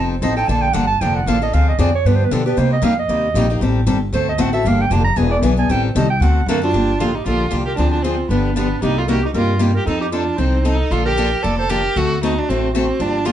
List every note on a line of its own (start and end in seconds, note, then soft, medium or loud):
0.00 0.21 F1 medium
0.00 0.14 F3 medium
0.00 0.14 C4 medium
0.00 0.14 D#4 medium
0.00 0.15 A4 medium
0.00 0.10 A5 medium
0.11 0.24 C5 medium
0.22 0.47 A1 medium
0.22 0.32 F3 medium
0.22 0.33 C4 loud
0.22 0.33 D#4 medium
0.22 0.33 A4 loud
0.22 0.36 D#5 medium
0.36 0.49 C4 soft
0.36 0.48 D#4 soft
0.36 0.48 A4 medium
0.36 0.49 G5 medium
0.48 0.73 A#1 medium
0.48 0.67 D3 medium
0.48 0.67 F3 medium
0.48 0.67 A#3 medium
0.48 0.67 D4 medium
0.48 0.67 A4 medium
0.48 0.63 A5 medium
0.62 0.75 G5 loud
0.73 0.99 G1 medium
0.73 0.84 D3 medium
0.73 0.85 F3 loud
0.73 0.85 A#3 loud
0.73 0.85 D4 medium
0.73 0.85 A4 loud
0.73 0.87 F#5 medium
0.87 1.02 A5 loud
1.01 1.26 F1 medium
1.01 1.19 D3 medium
1.01 1.19 F3 medium
1.01 1.19 A#3 medium
1.01 1.20 D4 medium
1.01 1.20 A4 medium
1.01 1.15 G5 medium
1.15 1.29 F#5 medium
1.26 1.52 A1 medium
1.26 1.37 D3 medium
1.26 1.37 F3 medium
1.26 1.38 A#3 medium
1.26 1.37 D4 medium
1.26 1.38 A4 loud
1.26 1.42 F5 medium
1.42 1.53 A#3 soft
1.42 1.53 D4 medium
1.42 1.53 A4 medium
1.42 1.55 D#5 medium
1.53 1.78 D2 medium
1.53 1.71 D3 medium
1.53 1.71 F3 medium
1.53 1.71 C4 medium
1.53 1.71 D4 medium
1.53 1.71 G#4 medium
1.53 1.68 F5 medium
1.68 1.80 D#5 medium
1.79 2.04 F2 medium
1.79 1.89 D3 medium
1.79 1.89 F3 medium
1.79 1.89 C4 medium
1.79 1.89 D4 medium
1.79 1.89 G#4 medium
1.79 1.93 D5 medium
1.95 2.08 C#5 medium
2.05 2.30 G2 medium
2.05 2.24 D3 medium
2.05 2.24 F3 medium
2.05 2.24 B3 medium
2.05 2.24 D4 medium
2.05 2.24 G4 medium
2.05 2.17 B4 medium
2.15 2.26 C5 medium
2.24 2.34 B4 medium
2.31 2.56 B2 medium
2.31 2.41 D3 medium
2.31 2.41 F3 medium
2.31 2.42 B3 medium
2.31 2.42 D4 medium
2.31 2.42 G4 medium
2.31 2.45 A4 medium
2.46 2.57 B3 soft
2.46 2.57 D4 medium
2.46 2.57 G4 medium
2.46 2.59 B4 medium
2.57 2.75 C3 medium
2.57 2.81 C3 medium
2.57 2.75 G3 medium
2.57 2.75 A#3 medium
2.57 2.76 D#4 medium
2.57 2.76 G4 medium
2.57 2.72 C5 medium
2.73 2.86 D#5 medium
2.82 3.08 F2 medium
2.82 2.92 C3 medium
2.82 2.93 G3 medium
2.82 2.93 A#3 loud
2.82 2.93 D#4 medium
2.82 2.93 G4 medium
2.82 2.98 F5 loud
2.99 3.58 D#5 loud
3.08 3.34 D#2 medium
3.08 3.27 C3 medium
3.08 3.27 G3 medium
3.08 3.27 A#3 medium
3.08 3.27 D#4 medium
3.08 3.27 G4 medium
3.34 3.60 A#1 medium
3.34 3.45 C3 medium
3.34 3.46 G3 medium
3.34 3.46 A#3 medium
3.34 3.46 D#4 loud
3.34 3.46 G4 loud
3.50 3.61 A#3 medium
3.50 3.61 D#4 medium
3.50 3.61 G4 medium
3.61 3.86 A1 medium
3.61 3.79 D#3 medium
3.61 3.80 G3 medium
3.61 3.80 C4 medium
3.61 3.80 G4 medium
3.61 3.80 A4 medium
3.87 4.12 G1 medium
3.87 3.97 D#3 medium
3.87 3.97 G3 medium
3.87 3.97 C4 medium
3.87 3.97 G4 medium
3.87 3.97 A4 loud
4.12 4.37 D2 medium
4.12 4.31 D3 medium
4.12 4.31 A3 medium
4.12 4.31 C4 medium
4.12 4.32 F#4 medium
4.12 4.32 A4 medium
4.12 4.27 C5 medium
4.29 4.42 D#5 medium
4.38 4.64 A1 medium
4.38 4.49 D3 medium
4.38 4.49 A3 loud
4.38 4.49 C4 medium
4.38 4.49 F#4 loud
4.38 4.49 A4 loud
4.38 4.53 F#5 loud
4.53 4.65 C4 soft
4.53 4.65 F#4 medium
4.53 4.64 A4 medium
4.53 4.69 E5 medium
4.65 4.90 G1 medium
4.65 4.83 D3 medium
4.65 4.84 F3 medium
4.65 4.84 A#3 medium
4.65 4.84 D4 medium
4.65 4.84 G4 medium
4.65 4.83 F5 medium
4.81 4.94 G5 loud
4.90 5.16 F1 medium
4.90 5.01 D3 medium
4.90 5.01 F3 medium
4.90 5.02 A#3 medium
4.90 5.02 D4 loud
4.90 5.02 G4 medium
4.90 5.04 A5 medium
5.04 5.19 A#5 loud
5.16 5.41 E1 medium
5.16 5.35 E3 medium
5.16 5.35 B3 medium
5.16 5.35 D4 medium
5.16 5.36 G#4 medium
5.16 5.30 G#5 loud
5.31 5.38 D5 medium
5.42 5.68 B1 medium
5.42 5.53 E3 medium
5.42 5.53 B3 medium
5.42 5.53 D4 loud
5.42 5.54 G#4 loud
5.57 5.69 B3 medium
5.57 5.69 D4 medium
5.57 5.68 G#4 medium
5.57 5.72 G#5 loud
5.69 5.95 A1 medium
5.69 5.88 D#3 medium
5.69 5.88 G3 medium
5.69 5.88 C4 medium
5.69 5.88 G4 medium
5.69 5.88 A4 medium
5.69 5.83 G5 medium
5.84 5.99 C5 medium
5.95 6.19 C2 medium
5.95 6.06 D#3 loud
5.95 6.06 G3 medium
5.95 6.06 C4 loud
5.95 6.06 G4 loud
5.95 6.06 A4 loud
5.95 6.09 D#5 medium
6.10 6.23 G5 loud
6.20 6.46 D2 medium
6.20 6.40 D3 medium
6.20 6.40 A3 medium
6.20 6.40 C4 medium
6.20 6.40 F#4 medium
6.20 6.40 A4 medium
6.20 6.48 F#5 medium
6.46 6.72 F#2 medium
6.46 6.58 D3 loud
6.46 6.58 A3 medium
6.46 6.62 A#3 medium
6.46 6.58 C4 loud
6.46 6.62 D4 medium
6.46 6.58 F#4 loud
6.46 6.58 A4 loud
6.62 6.74 C4 medium
6.62 7.02 D4 loud
6.62 7.02 F4 medium
6.62 6.74 F#4 medium
6.62 6.73 A4 medium
6.73 6.94 G1 medium
6.73 6.92 D3 medium
6.73 6.92 F3 medium
6.73 6.92 A#3 medium
6.73 6.92 D4 medium
6.73 6.92 G4 medium
7.00 7.22 A1 medium
7.00 7.10 D3 medium
7.00 7.10 F3 medium
7.00 7.10 A#3 medium
7.00 7.10 D4 medium
7.00 7.16 F4 medium
7.00 7.11 G4 medium
7.00 7.17 A4 medium
7.15 7.25 D#4 medium
7.15 7.26 G4 medium
7.26 7.48 A#1 medium
7.26 7.44 D3 medium
7.26 7.44 F3 medium
7.26 7.44 A#3 medium
7.26 7.44 D4 medium
7.26 7.50 F4 medium
7.26 7.45 G4 medium
7.26 7.51 A4 medium
7.51 7.74 C2 medium
7.51 7.61 D3 medium
7.51 7.62 F3 medium
7.51 7.62 A#3 medium
7.51 7.62 D4 medium
7.51 7.62 G4 medium
7.65 7.76 G4 medium
7.65 7.78 A#4 medium
7.77 8.20 D2 medium
7.77 7.96 D3 medium
7.77 7.96 F3 medium
7.77 7.97 C4 medium
7.77 7.91 D4 medium
7.77 7.97 D4 medium
7.77 7.92 F4 medium
7.77 7.96 G#4 medium
7.91 8.04 D4 medium
7.91 8.04 F4 medium
8.03 8.14 D3 medium
8.03 8.15 F3 medium
8.03 8.29 C4 medium
8.03 8.15 C4 medium
8.03 8.15 D4 medium
8.03 8.29 F4 medium
8.03 8.15 G#4 medium
8.29 8.71 G1 medium
8.29 8.49 D3 medium
8.29 8.49 F3 medium
8.29 8.54 B3 medium
8.29 8.49 B3 medium
8.29 8.54 D4 medium
8.29 8.49 D4 medium
8.29 8.49 G4 medium
8.55 8.66 D3 medium
8.55 8.67 F3 medium
8.55 8.81 B3 medium
8.55 8.67 B3 medium
8.55 8.80 D4 medium
8.55 8.67 D4 medium
8.55 8.67 G4 medium
8.82 9.24 C2 medium
8.82 9.01 C3 medium
8.82 9.01 G3 medium
8.82 9.01 A#3 medium
8.82 9.00 D#4 medium
8.82 9.01 D#4 medium
8.82 8.98 G4 medium
8.82 9.01 G4 medium
8.97 9.07 F4 medium
8.97 9.06 A4 medium
9.06 9.19 C3 medium
9.06 9.19 G3 medium
9.06 9.19 A#3 medium
9.06 9.19 D#4 medium
9.06 9.12 F#4 medium
9.06 9.19 G4 medium
9.06 9.10 A4 medium
9.06 9.22 A#4 medium
9.10 9.24 G4 medium
9.22 9.30 D#4 medium
9.22 9.28 G4 medium
9.34 9.76 G2 medium
9.34 9.53 C3 medium
9.34 9.53 G3 medium
9.34 9.53 A#3 medium
9.34 9.53 D#4 medium
9.34 9.60 F4 medium
9.34 9.53 G4 medium
9.34 9.59 A#4 medium
9.59 9.70 C3 medium
9.59 9.70 G3 medium
9.59 9.71 A#3 medium
9.59 9.71 D#4 medium
9.59 9.71 G4 medium
9.74 9.87 G4 medium
9.74 9.86 A#4 medium
9.86 10.28 F2 medium
9.86 10.05 F3 medium
9.86 10.06 C4 medium
9.86 10.00 D#4 medium
9.86 10.05 D#4 medium
9.86 10.00 A4 medium
9.86 10.06 A4 medium
10.01 10.06 D#4 medium
10.01 10.07 G4 medium
10.12 10.23 F3 medium
10.12 10.23 C4 medium
10.12 10.40 D4 medium
10.12 10.23 D#4 medium
10.12 10.39 F4 medium
10.12 10.23 A4 medium
10.37 10.81 C2 medium
10.37 10.57 F3 medium
10.37 10.57 C4 medium
10.37 10.66 C4 medium
10.37 10.67 D#4 medium
10.37 10.57 D#4 medium
10.37 10.57 A4 medium
10.64 10.75 F3 medium
10.64 10.76 C4 medium
10.64 10.93 D#4 medium
10.64 10.76 D#4 medium
10.64 10.91 A4 medium
10.64 10.76 A4 medium
10.91 11.33 A#1 medium
10.91 11.09 D3 medium
10.91 11.10 F3 medium
10.91 11.10 A#3 medium
10.91 11.10 D4 medium
10.91 11.04 F4 medium
10.91 11.05 A4 medium
10.91 11.10 A4 medium
11.05 11.44 G4 medium
11.05 11.44 A#4 medium
11.17 11.28 D3 medium
11.17 11.28 F3 medium
11.17 11.28 A#3 medium
11.17 11.28 D4 medium
11.17 11.28 A4 medium
11.43 11.86 F1 medium
11.43 11.62 D3 medium
11.43 11.62 F3 medium
11.43 11.62 A#3 medium
11.43 11.62 D4 medium
11.43 11.57 A4 medium
11.43 11.62 A4 medium
11.43 11.58 D5 medium
11.58 11.72 A4 medium
11.58 11.71 C5 medium
11.69 11.80 D3 medium
11.69 11.80 F3 medium
11.69 11.80 A#3 medium
11.69 11.80 D4 medium
11.69 11.98 G4 loud
11.69 11.80 A4 medium
11.69 11.98 A#4 medium
11.96 12.38 D2 medium
11.96 12.14 D3 medium
11.96 12.15 A3 medium
11.96 12.14 C4 medium
11.96 12.22 F#4 medium
11.96 12.15 F#4 medium
11.96 12.21 A4 medium
11.96 12.15 A4 medium
12.22 12.33 D3 medium
12.22 12.33 A3 medium
12.22 12.33 C4 medium
12.22 12.40 D#4 medium
12.22 12.37 F#4 medium
12.22 12.33 F#4 medium
12.22 12.33 A4 medium
12.37 12.50 D4 medium
12.37 12.48 F#4 medium
12.48 12.90 A1 medium
12.48 12.67 D3 medium
12.48 12.67 A3 medium
12.48 12.74 C4 medium
12.48 12.67 C4 medium
12.48 12.73 F#4 medium
12.48 12.68 F#4 medium
12.48 12.68 A4 medium
12.73 12.85 D3 medium
12.73 12.85 A3 medium
12.73 13.02 C4 medium
12.73 12.85 C4 medium
12.73 13.02 F#4 medium
12.73 12.85 F#4 medium
12.73 12.85 A4 medium
13.00 13.32 G1 medium
13.00 13.18 D3 medium
13.00 13.18 F3 medium
13.00 13.18 A#3 medium
13.00 13.18 D4 medium
13.00 13.27 D4 medium
13.00 13.29 F4 medium
13.00 13.18 G4 medium
13.25 13.32 D3 medium
13.25 13.32 F3 medium
13.25 13.32 A#3 medium
13.25 13.32 D4 medium
13.25 13.32 F4 medium
13.25 13.32 G4 medium
13.25 13.32 A4 medium